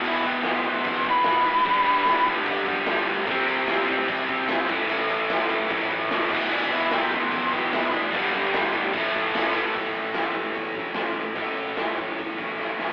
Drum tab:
CC |x-x-x-x-x-x-x-x-|x-x-x-x-x-x-x-x-|x-x-x-x-x-x-x-x-|x-x-x-x-x-x-x-x-|
HH |----------------|----------------|----------------|----------------|
SD |----o-------o---|----o-------o---|----o-------o---|----o-------o---|
BD |------o-o-o-----|o-----o-o-o-----|o-----o-o-o---o-|------o-o-o---o-|

CC |x-x-x-x-x-x-x-x-|x-x-x-x-x-x-x-x-|----------------|----------------|
HH |----------------|----------------|o-o-o-o-o-o-o-o-|o-o-o-o-o-o-----|
SD |----o-------o---|----o-------o---|----o-------o---|----o-----o-o-oo|
BD |------o-o-o-----|o-----o-o-o-----|o-----o-o-o-----|o-----o-o-o-----|